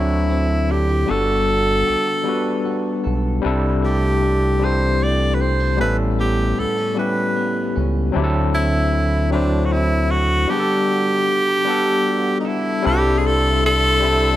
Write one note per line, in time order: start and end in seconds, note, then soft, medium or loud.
0.00 1.06 D2 loud
0.00 2.24 D3 medium
0.00 1.08 F#3 medium
0.00 1.10 F#3 medium
0.00 0.28 C4 medium
0.00 1.10 C4 medium
0.00 1.09 D4 medium
0.00 0.69 E4 medium
0.00 0.73 E4 medium
0.00 1.10 E4 medium
0.00 0.68 F#4 medium
0.00 1.10 A4 loud
0.30 1.16 C4 medium
0.69 0.89 D4 medium
0.69 1.12 G4 medium
0.89 1.16 E4 soft
1.06 1.83 G3 medium
1.06 3.86 G3 medium
1.06 1.84 B3 medium
1.06 1.85 D4 medium
1.10 1.84 G1 loud
1.10 1.85 F#4 medium
1.10 3.06 A4 loud
1.10 1.86 A4 medium
1.47 2.64 F#4 medium
1.87 1.97 B1 soft
1.87 2.07 G4 medium
2.07 3.03 A4 soft
2.24 3.01 G3 medium
2.24 3.02 B3 medium
2.24 3.51 B3 medium
2.24 3.02 D4 medium
2.24 3.03 F#4 medium
2.29 3.04 B4 medium
2.65 3.51 F#4 medium
3.04 3.41 B1 medium
3.04 6.22 A4 medium
3.42 5.82 C2 loud
3.42 5.79 C3 medium
3.42 4.19 G3 medium
3.42 4.19 C4 medium
3.42 4.20 D4 medium
3.42 4.21 E4 medium
3.47 4.21 A4 loud
3.83 5.00 A3 medium
3.83 4.66 G4 medium
4.23 5.40 D4 medium
4.59 6.97 E3 medium
4.59 5.37 G3 medium
4.59 5.37 C4 medium
4.59 5.38 D4 medium
4.59 5.38 E4 medium
4.65 5.39 G4 medium
4.65 5.05 C5 medium
5.00 6.18 A3 medium
5.00 5.36 D5 medium
5.35 5.44 B4 medium
5.40 5.60 C4 medium
5.40 5.80 C5 medium
5.60 5.87 D4 soft
5.77 6.54 A1 loud
5.77 8.14 A2 medium
5.77 6.54 G3 medium
5.77 6.55 B3 medium
5.77 6.55 C#4 medium
5.81 6.56 E4 medium
5.81 6.57 A4 medium
5.81 5.97 B4 medium
6.19 6.57 B3 medium
6.19 6.61 G4 medium
6.58 6.67 C#2 soft
6.58 6.78 B3 medium
6.58 6.98 A4 medium
6.78 7.75 C#4 medium
6.95 7.72 G3 medium
6.95 8.22 G3 medium
6.95 7.73 B3 medium
6.95 7.73 C#4 medium
6.95 7.74 E4 medium
6.95 7.82 B4 medium
7.00 7.75 G4 medium
7.36 8.22 B3 medium
7.76 8.11 C#2 medium
7.76 8.22 C#4 medium
8.12 11.64 D3 medium
8.12 8.89 F#3 medium
8.12 8.90 C4 medium
8.12 8.91 D4 medium
8.12 8.91 E4 medium
8.16 10.47 D2 loud
8.16 8.22 G4 medium
8.24 8.95 A4 loud
8.53 9.70 C4 medium
8.53 9.29 E4 medium
8.92 10.09 E4 medium
9.30 10.07 F#3 medium
9.30 10.49 F#3 medium
9.30 10.08 C4 medium
9.30 9.67 D4 medium
9.30 10.08 D4 medium
9.30 10.09 E4 medium
9.35 10.10 C5 medium
9.65 9.74 F#4 medium
9.71 10.57 C4 medium
9.71 10.13 E4 medium
10.10 10.57 E4 medium
10.10 10.51 F#4 loud
10.48 11.25 G3 medium
10.48 13.43 G3 medium
10.48 11.25 B3 medium
10.48 11.26 D4 medium
10.48 12.39 G4 loud
10.48 11.27 F#5 medium
10.53 10.58 G#4 medium
10.60 11.31 A4 medium
10.89 12.05 F#4 medium
11.28 11.48 G4 medium
11.48 12.44 A4 medium
11.65 12.42 G3 medium
11.65 12.43 B3 medium
11.65 12.93 B3 medium
11.65 12.43 D4 medium
11.65 12.44 F#5 medium
11.70 12.45 A4 medium
12.06 12.93 F#4 medium
12.40 12.49 D#4 medium
12.45 12.88 E4 medium
12.45 13.42 A4 medium
12.82 13.60 G3 medium
12.82 13.60 C4 medium
12.82 13.61 D4 medium
12.82 14.36 A4 medium
12.82 14.36 D5 medium
12.82 14.36 E5 medium
12.82 14.36 C6 medium
12.86 14.36 C2 loud
12.86 13.62 E4 medium
12.86 13.20 G4 loud
12.86 13.62 A4 medium
13.19 13.28 G#4 medium
13.27 13.64 A4 loud
13.66 14.36 A4 loud
14.00 14.36 G3 medium
14.00 14.36 C4 medium
14.00 14.36 D4 medium
14.04 14.36 E4 medium
14.04 14.36 A4 medium